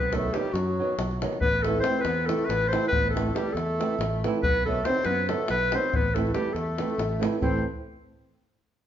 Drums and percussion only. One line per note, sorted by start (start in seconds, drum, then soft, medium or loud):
0.13 davul high medium
0.34 davul high medium
0.45 davul high soft
0.56 davul high medium
0.99 davul high medium
1.11 davul high soft
1.22 davul high medium
1.33 davul high soft
1.41 davul low loud
1.54 davul high soft
1.64 davul high medium
1.84 davul high medium
2.05 davul high medium
2.29 davul high medium
2.50 davul high medium
2.73 davul high medium
2.93 davul low loud
3.05 davul high soft
3.17 davul high medium
3.36 davul high medium
3.57 davul high medium
3.81 davul high medium
4.01 davul high medium
4.24 davul high medium
4.43 davul low loud
4.55 davul high soft
4.85 davul high medium
5.05 davul high medium
5.29 davul high medium
5.48 davul high medium
5.72 davul high loud
5.94 davul low loud
6.16 davul high medium
6.27 davul high soft
6.35 davul high medium
6.56 davul high medium
6.78 davul high medium
6.90 davul high soft
6.99 davul high medium
7.23 davul high medium
7.42 davul low medium